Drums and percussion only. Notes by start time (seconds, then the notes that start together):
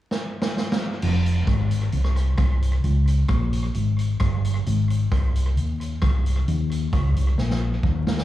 0.11 snare
0.42 snare
0.57 snare
0.72 snare
1.02 crash
1.26 closed hi-hat
1.47 kick, cross-stick, closed hi-hat
1.71 closed hi-hat
1.92 closed hi-hat
2.04 cross-stick
2.16 cross-stick, closed hi-hat
2.38 kick, cross-stick, closed hi-hat
2.62 closed hi-hat
2.84 closed hi-hat
3.07 closed hi-hat
3.29 kick, cross-stick, closed hi-hat
3.53 closed hi-hat
3.74 closed hi-hat
3.99 closed hi-hat
4.20 kick, cross-stick, closed hi-hat
4.45 closed hi-hat
4.66 closed hi-hat
4.90 closed hi-hat
5.12 kick, cross-stick, closed hi-hat
5.35 closed hi-hat
5.57 closed hi-hat
5.81 closed hi-hat
6.02 kick, cross-stick, closed hi-hat
6.26 closed hi-hat
6.48 closed hi-hat
6.71 closed hi-hat
6.93 kick, cross-stick, closed hi-hat
7.16 closed hi-hat
7.38 snare
7.50 snare
7.83 kick
8.07 snare
8.18 snare